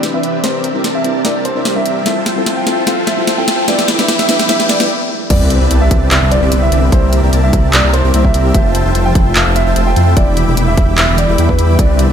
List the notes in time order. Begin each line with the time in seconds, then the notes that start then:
Already playing: E3 G3 C4 D4 E4 B4, riser
0.03 C4 G4 B4 D5 E5, snare, closed hi-hat
0.13 G3 C4 D4 E4 B4 E5
0.23 C4 G4 B4 D5 E5, closed hi-hat
0.43 G3 C4 D4 E4 G4 A#4 C5 D5 E5, snare, closed hi-hat
0.64 closed hi-hat
0.74 G3 C4 D4 E4 G4 A#4 D5 E5
0.84 C4 G4 A#4 D5 A5, snare, closed hi-hat
0.95 E5
1.04 G3 C4 D4 E4 G4 A#4 D5 A5, closed hi-hat
1.24 G3 C4 D4 E4 G4 A#4 D5 E5, snare, closed hi-hat
1.35 C4 G4 A#4 D5 A5
1.45 C5, closed hi-hat
1.55 G3 C4 D4 E4 G4 A#4 D5 E5
1.65 C4 G4 A#4 D5 E5, snare, closed hi-hat
1.75 G3 C4 D4 E4 A#4 E5
1.86 C4 G4 A#4 D5 E5, closed hi-hat
2.05 F3 G3 C4 E4 F4 A4 C5 E5 G5 A5, snare, closed hi-hat
2.26 snare, closed hi-hat
2.36 G3 C4 E4 F4 A4 C5 E5 G5 A5
2.46 F4 C5 E5 G5 A5, snare, closed hi-hat
2.57 G5
2.66 G3 C4 E4 F4 A4 C5 E5 G5 A5, snare, closed hi-hat
2.86 G3 C4 E4 F4 A4 C5 E5 F5 G5 A5, snare, closed hi-hat
2.98 F4 C5 E5 G5 A5
3.07 E5, snare, closed hi-hat
3.17 G3 C4 E4 F4 A4 C5 E5 G5 A5
3.27 F4 C5 E5 G5 A5, snare, closed hi-hat
3.37 G3 C4 E4 F4 A4 G5
3.48 F4 C5 E5 G5 A5, snare, closed hi-hat
3.67 G3 B3 D4 E4 B4 D5 E5 G5 B5 D6, snare, closed hi-hat
3.79 snare
3.88 snare, closed hi-hat
3.98 G3 B3 D4 E4 B4 E5 G5 B5 D6, snare
4.08 E4 E5 G5 B5 D6, snare, closed hi-hat
4.19 E5, snare
4.28 G3 B3 D4 E4 B4 E5 G5 B5 D6, snare, closed hi-hat
4.39 snare
4.48 G3 B3 D4 E4 B4 E5 G5 B5 D6, snare, closed hi-hat
4.60 E4 E5 G5 B5 D6, snare
4.69 E4 D5 E5 G5 B5 D6, snare, closed hi-hat
4.79 G3 B3 D4 E4 B4 E5 G5 B5 D6, snare
5.30 C2 D3 B3 C4 G4 B4 D5 E5, kick, closed hi-hat, crash, sub drop
5.41 C4
5.50 D4, closed hi-hat
5.61 C2 C4 E4 G4 B4 D5 E5
5.71 C2 B3 C4 G4 B4 D5 A5, closed hi-hat
5.81 C4 E5
5.91 C2 C4 D4 G4 B4 D5 A5, kick, closed hi-hat
6.02 E4
6.11 C2 B3 C4 G4 B4 D5 E5, clap, closed hi-hat
6.22 C2 C4 G4 B4 D5 A5
6.32 D4 D5, closed hi-hat
6.42 C2 C4 E4 G4 B4 D5 E5
6.52 C2 B3 C4 G4 B4 D5 E5, closed hi-hat
6.62 C4 E5
6.72 C2 C4 D4 G4 B4 D5 E5, closed hi-hat
6.83 E4
6.92 C2 C3 G3 A#3 C4 G4 A#4 C5 E5, kick, closed hi-hat
7.03 C4
7.13 E4, closed hi-hat
7.23 C2 C4 G4 A#4 D5 E5
7.33 C2 A#3 C4 G4 A#4 D5 A5, closed hi-hat
7.44 C4 E5
7.53 C2 C4 E4 G4 A#4 D5 A5, kick, closed hi-hat
7.64 G4
7.73 C2 A#3 C4 G4 A#4 D5 E5, clap, closed hi-hat
7.84 C2 C4 G4 A#4 D5 A5
7.94 E4 C5, closed hi-hat
8.04 C2 C4 G4 A#4 D5 E5
8.14 C2 A#3 C4 G4 A#4 D5 E5, closed hi-hat
8.25 E5, kick
8.34 C2 C4 E4 G4 A#4 D5 E5, closed hi-hat
8.45 G4
8.54 F1 C3 F3 A3 F4 C5 E5 A5, kick, closed hi-hat
8.65 C4
8.75 E4, closed hi-hat
8.85 F1 F4 C5 E5 G5 A5
8.95 F1 A3 F4 C5 E5 G5 A5, closed hi-hat
9.06 C4 G5
9.15 F1 E4 A5, kick, closed hi-hat
9.26 F4
9.36 F1 A3 F4 C5 E5 F5 G5 A5, clap, closed hi-hat
9.46 F1 C4 F4 C5 E5 G5 A5
9.56 E4 E5, closed hi-hat
9.66 F1 F4 C5 E5 G5 A5
9.76 F1 A3 F4 C5 E5 G5 A5, closed hi-hat
9.87 C4 G5
9.96 F2 E4 F4 C5 E5 G5 A5, closed hi-hat
10.07 F4
10.17 E1 D3 G3 B3 E4 D5 E5 G5 D6, kick, closed hi-hat
10.27 D4
10.37 E4, closed hi-hat
10.48 E1 E4 G4 E5 G5 B5 D6
10.57 E1 B3 E4 E5 G5 B5 D6, closed hi-hat
10.68 D4 E5
10.77 E1 E4 E5, kick, closed hi-hat
10.88 G4
10.98 E1 B3 E4 E5 G5 B5 D6, clap, closed hi-hat
11.09 E1 D4 E4 E5 G5 B5 D6
11.18 E4 D5, closed hi-hat
11.29 E1 E4 G4 E5 G5 B5 D6
11.38 E2 B3 E4 E5 G5 B5 D6, closed hi-hat
11.49 B4, kick
11.59 E2 E4 E5 G5 B5 D6, closed hi-hat
11.69 G4
11.79 C2 C3 E3 B3 C4 D4 G4 B4 D5 E5, kick, closed hi-hat
11.90 C4
11.99 D4, closed hi-hat